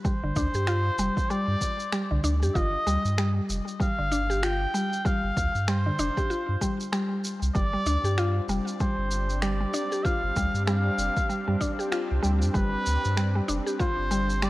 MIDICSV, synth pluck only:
0, 0, Header, 1, 2, 480
1, 0, Start_track
1, 0, Tempo, 625000
1, 39, Time_signature, 4, 2, 24, 8
1, 11134, End_track
2, 0, Start_track
2, 0, Title_t, "Synth pluck"
2, 0, Program_c, 0, 84
2, 36, Note_on_c, 0, 55, 77
2, 118, Note_off_c, 0, 55, 0
2, 181, Note_on_c, 0, 50, 75
2, 275, Note_off_c, 0, 50, 0
2, 280, Note_on_c, 0, 62, 109
2, 360, Note_off_c, 0, 62, 0
2, 421, Note_on_c, 0, 67, 80
2, 515, Note_off_c, 0, 67, 0
2, 519, Note_on_c, 0, 65, 110
2, 749, Note_off_c, 0, 65, 0
2, 760, Note_on_c, 0, 55, 104
2, 893, Note_off_c, 0, 55, 0
2, 1000, Note_on_c, 0, 55, 109
2, 1470, Note_off_c, 0, 55, 0
2, 1480, Note_on_c, 0, 55, 92
2, 1560, Note_off_c, 0, 55, 0
2, 1621, Note_on_c, 0, 50, 78
2, 1715, Note_off_c, 0, 50, 0
2, 1720, Note_on_c, 0, 62, 98
2, 1800, Note_off_c, 0, 62, 0
2, 1864, Note_on_c, 0, 67, 74
2, 1957, Note_off_c, 0, 67, 0
2, 1961, Note_on_c, 0, 65, 100
2, 2190, Note_off_c, 0, 65, 0
2, 2202, Note_on_c, 0, 55, 106
2, 2334, Note_off_c, 0, 55, 0
2, 2443, Note_on_c, 0, 55, 116
2, 2908, Note_off_c, 0, 55, 0
2, 2917, Note_on_c, 0, 55, 85
2, 2998, Note_off_c, 0, 55, 0
2, 3061, Note_on_c, 0, 50, 76
2, 3155, Note_off_c, 0, 50, 0
2, 3161, Note_on_c, 0, 62, 100
2, 3240, Note_off_c, 0, 62, 0
2, 3300, Note_on_c, 0, 67, 77
2, 3395, Note_off_c, 0, 67, 0
2, 3400, Note_on_c, 0, 65, 111
2, 3630, Note_off_c, 0, 65, 0
2, 3642, Note_on_c, 0, 55, 102
2, 3774, Note_off_c, 0, 55, 0
2, 3878, Note_on_c, 0, 55, 97
2, 4349, Note_off_c, 0, 55, 0
2, 4361, Note_on_c, 0, 55, 93
2, 4440, Note_off_c, 0, 55, 0
2, 4502, Note_on_c, 0, 50, 80
2, 4596, Note_off_c, 0, 50, 0
2, 4601, Note_on_c, 0, 62, 109
2, 4681, Note_off_c, 0, 62, 0
2, 4740, Note_on_c, 0, 67, 82
2, 4835, Note_off_c, 0, 67, 0
2, 4839, Note_on_c, 0, 65, 103
2, 5069, Note_off_c, 0, 65, 0
2, 5078, Note_on_c, 0, 55, 97
2, 5212, Note_off_c, 0, 55, 0
2, 5317, Note_on_c, 0, 55, 104
2, 5786, Note_off_c, 0, 55, 0
2, 5795, Note_on_c, 0, 55, 85
2, 5877, Note_off_c, 0, 55, 0
2, 5938, Note_on_c, 0, 55, 73
2, 5996, Note_off_c, 0, 55, 0
2, 6039, Note_on_c, 0, 62, 105
2, 6119, Note_off_c, 0, 62, 0
2, 6177, Note_on_c, 0, 67, 74
2, 6273, Note_off_c, 0, 67, 0
2, 6280, Note_on_c, 0, 65, 117
2, 6510, Note_off_c, 0, 65, 0
2, 6520, Note_on_c, 0, 55, 105
2, 6653, Note_off_c, 0, 55, 0
2, 6760, Note_on_c, 0, 55, 106
2, 7227, Note_off_c, 0, 55, 0
2, 7237, Note_on_c, 0, 55, 87
2, 7318, Note_off_c, 0, 55, 0
2, 7376, Note_on_c, 0, 55, 70
2, 7435, Note_off_c, 0, 55, 0
2, 7477, Note_on_c, 0, 62, 98
2, 7559, Note_off_c, 0, 62, 0
2, 7617, Note_on_c, 0, 67, 77
2, 7713, Note_off_c, 0, 67, 0
2, 7714, Note_on_c, 0, 65, 102
2, 7947, Note_off_c, 0, 65, 0
2, 7958, Note_on_c, 0, 55, 105
2, 8092, Note_off_c, 0, 55, 0
2, 8197, Note_on_c, 0, 55, 108
2, 8665, Note_off_c, 0, 55, 0
2, 8674, Note_on_c, 0, 55, 90
2, 8757, Note_off_c, 0, 55, 0
2, 8815, Note_on_c, 0, 55, 81
2, 8874, Note_off_c, 0, 55, 0
2, 8914, Note_on_c, 0, 62, 104
2, 8997, Note_off_c, 0, 62, 0
2, 9054, Note_on_c, 0, 67, 73
2, 9152, Note_off_c, 0, 67, 0
2, 9153, Note_on_c, 0, 65, 110
2, 9386, Note_off_c, 0, 65, 0
2, 9389, Note_on_c, 0, 55, 100
2, 9528, Note_off_c, 0, 55, 0
2, 9632, Note_on_c, 0, 55, 102
2, 10104, Note_off_c, 0, 55, 0
2, 10113, Note_on_c, 0, 55, 90
2, 10196, Note_off_c, 0, 55, 0
2, 10255, Note_on_c, 0, 55, 80
2, 10314, Note_off_c, 0, 55, 0
2, 10354, Note_on_c, 0, 62, 110
2, 10437, Note_off_c, 0, 62, 0
2, 10494, Note_on_c, 0, 67, 80
2, 10591, Note_off_c, 0, 67, 0
2, 10594, Note_on_c, 0, 65, 104
2, 10827, Note_off_c, 0, 65, 0
2, 10836, Note_on_c, 0, 55, 102
2, 10971, Note_off_c, 0, 55, 0
2, 11077, Note_on_c, 0, 55, 108
2, 11134, Note_off_c, 0, 55, 0
2, 11134, End_track
0, 0, End_of_file